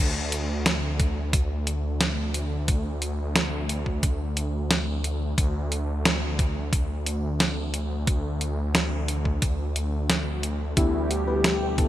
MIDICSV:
0, 0, Header, 1, 6, 480
1, 0, Start_track
1, 0, Tempo, 674157
1, 1909, Time_signature, 4, 2, 24, 8
1, 8461, End_track
2, 0, Start_track
2, 0, Title_t, "Analog synth lead"
2, 0, Program_c, 0, 81
2, 7669, Note_on_c, 0, 64, 92
2, 7909, Note_on_c, 0, 67, 98
2, 7920, Note_off_c, 0, 64, 0
2, 8390, Note_on_c, 0, 69, 92
2, 8401, Note_off_c, 0, 67, 0
2, 8461, Note_off_c, 0, 69, 0
2, 8461, End_track
3, 0, Start_track
3, 0, Title_t, "FM electric piano"
3, 0, Program_c, 1, 5
3, 7668, Note_on_c, 1, 50, 83
3, 7668, Note_on_c, 1, 59, 77
3, 7668, Note_on_c, 1, 64, 79
3, 7668, Note_on_c, 1, 67, 92
3, 7999, Note_off_c, 1, 50, 0
3, 8000, Note_off_c, 1, 59, 0
3, 8000, Note_off_c, 1, 64, 0
3, 8000, Note_off_c, 1, 67, 0
3, 8027, Note_on_c, 1, 50, 89
3, 8027, Note_on_c, 1, 59, 83
3, 8027, Note_on_c, 1, 64, 79
3, 8028, Note_on_c, 1, 71, 99
3, 8143, Note_off_c, 1, 50, 0
3, 8143, Note_off_c, 1, 59, 0
3, 8143, Note_off_c, 1, 64, 0
3, 8143, Note_off_c, 1, 71, 0
3, 8387, Note_on_c, 1, 50, 87
3, 8387, Note_on_c, 1, 59, 82
3, 8387, Note_on_c, 1, 64, 79
3, 8387, Note_on_c, 1, 67, 97
3, 8461, Note_off_c, 1, 50, 0
3, 8461, Note_off_c, 1, 59, 0
3, 8461, Note_off_c, 1, 64, 0
3, 8461, Note_off_c, 1, 67, 0
3, 8461, End_track
4, 0, Start_track
4, 0, Title_t, "Analog synth pad"
4, 0, Program_c, 2, 89
4, 7667, Note_on_c, 2, 76, 74
4, 7669, Note_on_c, 2, 47, 81
4, 7669, Note_on_c, 2, 55, 76
4, 7669, Note_on_c, 2, 67, 91
4, 8461, Note_off_c, 2, 47, 0
4, 8461, Note_off_c, 2, 55, 0
4, 8461, Note_off_c, 2, 67, 0
4, 8461, Note_off_c, 2, 76, 0
4, 8461, End_track
5, 0, Start_track
5, 0, Title_t, "Detuned saw bass"
5, 0, Program_c, 3, 39
5, 0, Note_on_c, 3, 38, 85
5, 3805, Note_off_c, 3, 38, 0
5, 3830, Note_on_c, 3, 38, 84
5, 7645, Note_off_c, 3, 38, 0
5, 7668, Note_on_c, 3, 38, 84
5, 8461, Note_off_c, 3, 38, 0
5, 8461, End_track
6, 0, Start_track
6, 0, Title_t, "Drums"
6, 229, Note_on_c, 9, 42, 62
6, 300, Note_off_c, 9, 42, 0
6, 469, Note_on_c, 9, 38, 112
6, 469, Note_on_c, 9, 42, 91
6, 540, Note_off_c, 9, 38, 0
6, 540, Note_off_c, 9, 42, 0
6, 709, Note_on_c, 9, 36, 104
6, 709, Note_on_c, 9, 42, 65
6, 780, Note_off_c, 9, 36, 0
6, 780, Note_off_c, 9, 42, 0
6, 949, Note_on_c, 9, 36, 114
6, 949, Note_on_c, 9, 42, 96
6, 1020, Note_off_c, 9, 36, 0
6, 1020, Note_off_c, 9, 42, 0
6, 1189, Note_on_c, 9, 42, 69
6, 1260, Note_off_c, 9, 42, 0
6, 1428, Note_on_c, 9, 38, 114
6, 1428, Note_on_c, 9, 42, 94
6, 1499, Note_off_c, 9, 38, 0
6, 1499, Note_off_c, 9, 42, 0
6, 1669, Note_on_c, 9, 42, 67
6, 1740, Note_off_c, 9, 42, 0
6, 1909, Note_on_c, 9, 42, 91
6, 1910, Note_on_c, 9, 36, 121
6, 1980, Note_off_c, 9, 42, 0
6, 1981, Note_off_c, 9, 36, 0
6, 2149, Note_on_c, 9, 42, 64
6, 2220, Note_off_c, 9, 42, 0
6, 2389, Note_on_c, 9, 38, 116
6, 2389, Note_on_c, 9, 42, 93
6, 2460, Note_off_c, 9, 38, 0
6, 2460, Note_off_c, 9, 42, 0
6, 2630, Note_on_c, 9, 42, 65
6, 2701, Note_off_c, 9, 42, 0
6, 2750, Note_on_c, 9, 36, 59
6, 2821, Note_off_c, 9, 36, 0
6, 2870, Note_on_c, 9, 36, 117
6, 2870, Note_on_c, 9, 42, 97
6, 2941, Note_off_c, 9, 36, 0
6, 2941, Note_off_c, 9, 42, 0
6, 3110, Note_on_c, 9, 42, 67
6, 3181, Note_off_c, 9, 42, 0
6, 3351, Note_on_c, 9, 38, 118
6, 3351, Note_on_c, 9, 42, 92
6, 3422, Note_off_c, 9, 38, 0
6, 3422, Note_off_c, 9, 42, 0
6, 3591, Note_on_c, 9, 42, 65
6, 3662, Note_off_c, 9, 42, 0
6, 3830, Note_on_c, 9, 36, 121
6, 3830, Note_on_c, 9, 42, 90
6, 3901, Note_off_c, 9, 36, 0
6, 3902, Note_off_c, 9, 42, 0
6, 4071, Note_on_c, 9, 42, 63
6, 4142, Note_off_c, 9, 42, 0
6, 4311, Note_on_c, 9, 38, 119
6, 4311, Note_on_c, 9, 42, 92
6, 4382, Note_off_c, 9, 38, 0
6, 4382, Note_off_c, 9, 42, 0
6, 4550, Note_on_c, 9, 36, 109
6, 4550, Note_on_c, 9, 42, 64
6, 4621, Note_off_c, 9, 36, 0
6, 4622, Note_off_c, 9, 42, 0
6, 4789, Note_on_c, 9, 36, 118
6, 4791, Note_on_c, 9, 42, 90
6, 4861, Note_off_c, 9, 36, 0
6, 4862, Note_off_c, 9, 42, 0
6, 5030, Note_on_c, 9, 42, 68
6, 5101, Note_off_c, 9, 42, 0
6, 5270, Note_on_c, 9, 38, 118
6, 5270, Note_on_c, 9, 42, 89
6, 5341, Note_off_c, 9, 38, 0
6, 5341, Note_off_c, 9, 42, 0
6, 5509, Note_on_c, 9, 42, 65
6, 5580, Note_off_c, 9, 42, 0
6, 5748, Note_on_c, 9, 42, 86
6, 5749, Note_on_c, 9, 36, 124
6, 5820, Note_off_c, 9, 36, 0
6, 5820, Note_off_c, 9, 42, 0
6, 5988, Note_on_c, 9, 42, 60
6, 6059, Note_off_c, 9, 42, 0
6, 6228, Note_on_c, 9, 38, 116
6, 6228, Note_on_c, 9, 42, 88
6, 6299, Note_off_c, 9, 38, 0
6, 6299, Note_off_c, 9, 42, 0
6, 6468, Note_on_c, 9, 42, 63
6, 6539, Note_off_c, 9, 42, 0
6, 6589, Note_on_c, 9, 36, 60
6, 6660, Note_off_c, 9, 36, 0
6, 6708, Note_on_c, 9, 42, 86
6, 6709, Note_on_c, 9, 36, 115
6, 6779, Note_off_c, 9, 42, 0
6, 6780, Note_off_c, 9, 36, 0
6, 6948, Note_on_c, 9, 42, 65
6, 7019, Note_off_c, 9, 42, 0
6, 7188, Note_on_c, 9, 38, 117
6, 7188, Note_on_c, 9, 42, 86
6, 7259, Note_off_c, 9, 38, 0
6, 7259, Note_off_c, 9, 42, 0
6, 7428, Note_on_c, 9, 42, 62
6, 7499, Note_off_c, 9, 42, 0
6, 7668, Note_on_c, 9, 36, 117
6, 7668, Note_on_c, 9, 42, 84
6, 7739, Note_off_c, 9, 36, 0
6, 7739, Note_off_c, 9, 42, 0
6, 7908, Note_on_c, 9, 42, 57
6, 7979, Note_off_c, 9, 42, 0
6, 8148, Note_on_c, 9, 38, 115
6, 8148, Note_on_c, 9, 42, 83
6, 8219, Note_off_c, 9, 38, 0
6, 8219, Note_off_c, 9, 42, 0
6, 8388, Note_on_c, 9, 36, 102
6, 8388, Note_on_c, 9, 42, 60
6, 8459, Note_off_c, 9, 36, 0
6, 8459, Note_off_c, 9, 42, 0
6, 8461, End_track
0, 0, End_of_file